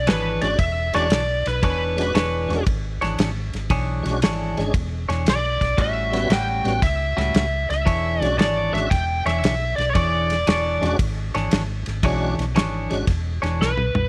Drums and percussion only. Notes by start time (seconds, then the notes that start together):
0.07 snare, ride
0.41 snare, ride
0.59 kick, ride
0.94 snare, ride
1.10 snare, ride
1.46 snare, ride
1.63 kick, ride
1.98 snare, ride
2.15 snare, ride
2.50 snare, ride
2.66 kick, ride
3.02 snare, ride
3.19 snare, ride
3.53 snare, ride
3.70 kick, ride
4.06 snare, ride
4.22 snare, ride
4.57 snare, ride
4.74 kick, ride
5.10 snare, ride
5.26 snare, ride
5.61 kick, snare, ride
5.78 kick, ride
6.13 snare, ride
6.30 snare, ride
6.65 snare, ride
6.82 kick, snare, ride
7.18 snare, ride
7.34 snare, ride
7.70 snare, ride
7.87 kick, ride
8.22 snare, ride
8.39 snare, ride
8.75 snare, ride
8.91 kick, snare, ride
9.26 snare, ride
9.44 snare, ride
9.78 snare, ride
9.95 kick, ride
10.30 snare, ride
10.47 snare, ride
10.83 snare, ride
10.99 kick, ride
11.35 snare, ride
11.51 snare, ride
11.86 snare, ride
12.03 kick, ride
12.39 snare, ride
12.56 snare, ride
12.90 snare, ride
13.07 kick, snare, ride
13.43 snare, ride
13.62 snare
13.77 mid tom
13.95 floor tom